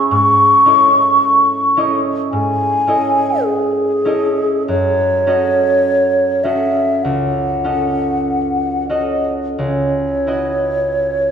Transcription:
0.00 0.10 G#2 soft
0.00 0.15 B3 soft
0.00 0.64 C#4 soft
0.00 0.65 E4 soft
0.00 3.48 G#4 soft
0.00 3.48 E5 soft
0.10 2.31 G#2 soft
0.10 2.01 C#6 medium
0.65 1.76 C#4 soft
0.65 1.76 E4 soft
0.65 1.76 A4 soft
0.65 1.77 D#5 soft
1.77 2.86 C#4 soft
1.77 2.86 E4 soft
1.77 2.87 A4 soft
1.77 2.88 D#5 soft
2.31 4.73 G#2 soft
2.31 3.45 G#5 medium
2.87 4.04 C#4 soft
2.87 4.04 E4 soft
2.87 4.05 A4 soft
2.87 4.05 D#5 soft
3.43 4.67 G#4 medium
4.05 5.26 C#4 soft
4.05 4.73 E4 soft
4.05 5.26 A4 soft
4.05 5.27 D#5 soft
4.68 8.58 F#2 soft
4.68 6.45 C#5 medium
5.27 6.43 C#4 soft
5.27 6.43 F#4 soft
5.27 6.44 A4 soft
5.27 6.44 D#5 soft
6.44 7.63 C#4 soft
6.44 7.64 F#4 soft
6.44 7.64 A4 soft
6.44 7.64 D#5 soft
6.44 7.05 E5 medium
7.03 9.57 C#2 soft
7.03 8.88 F#5 soft
7.64 8.88 C#4 soft
7.64 8.89 F#4 soft
7.64 8.89 A4 soft
7.64 8.89 D#5 soft
8.89 11.31 C#4 soft
8.89 10.26 F#4 soft
8.89 9.64 A4 soft
8.89 9.32 D#5 medium
8.89 10.27 D#5 soft
9.57 11.31 C#2 soft
9.57 11.31 C#5 medium
10.27 11.31 E4 soft
10.27 11.31 F#4 soft
10.27 11.31 B4 soft
10.27 11.31 D#5 soft

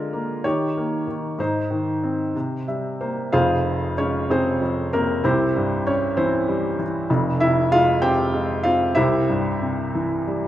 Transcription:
0.00 0.41 D3 soft
0.00 0.42 G#3 soft
0.00 0.41 F4 soft
0.00 0.47 A#4 medium
0.13 0.43 A#3 soft
0.44 1.06 D#3 medium
0.44 1.35 G4 medium
0.44 1.41 C#5 medium
0.77 1.37 A#3 soft
1.07 1.38 D#3 soft
1.39 2.32 G#2 soft
1.39 2.64 D#4 soft
1.39 2.64 C5 medium
1.71 2.33 D#3 soft
2.04 2.34 C4 soft
2.36 3.30 C3 soft
2.68 3.31 G3 soft
2.68 2.98 E5 soft
3.01 3.32 A#3 soft
3.01 3.31 C5 soft
3.32 5.20 F1 soft
3.32 4.60 F2 medium
3.32 3.94 F4 medium
3.32 3.94 G#4 medium
3.32 3.94 C5 medium
3.32 3.99 F5 medium
3.98 5.20 G#3 soft
3.98 4.28 C#4 medium
3.98 4.27 C#5 medium
4.30 4.92 C3 soft
4.30 4.89 C4 medium
4.30 4.89 G#4 medium
4.30 4.89 C5 medium
4.61 5.22 F2 soft
4.93 5.23 C3 soft
4.93 5.22 A#3 medium
4.93 5.25 A#4 medium
5.24 7.05 C2 medium
5.24 5.82 C4 medium
5.24 5.82 E4 medium
5.24 5.82 G4 medium
5.24 5.88 C5 medium
5.56 6.75 G2 medium
5.87 6.15 C#4 medium
5.87 6.18 C#5 medium
6.17 6.77 E3 medium
6.17 6.82 C4 soft
6.17 6.82 E4 medium
6.17 6.82 C5 medium
6.48 7.08 G3 medium
6.79 7.08 E3 medium
7.10 8.92 F1 medium
7.10 8.92 F2 medium
7.40 8.62 C3 soft
7.40 7.69 E4 medium
7.40 7.69 E5 medium
7.72 8.32 G#3 medium
7.72 8.00 F4 medium
7.72 8.00 F5 loud
8.02 8.63 C4 medium
8.02 8.60 G4 medium
8.02 8.61 C5 medium
8.02 8.66 G5 medium
8.34 8.94 G#3 medium
8.63 8.95 C4 medium
8.63 8.94 F4 medium
8.63 8.93 F5 medium
8.95 10.48 C2 medium
8.95 10.48 E4 medium
8.95 10.48 G4 medium
8.95 10.48 C5 medium
8.95 10.48 E5 medium
9.29 10.48 G2 soft
9.61 10.48 C3 soft
9.95 10.48 E3 medium
10.28 10.48 G3 soft

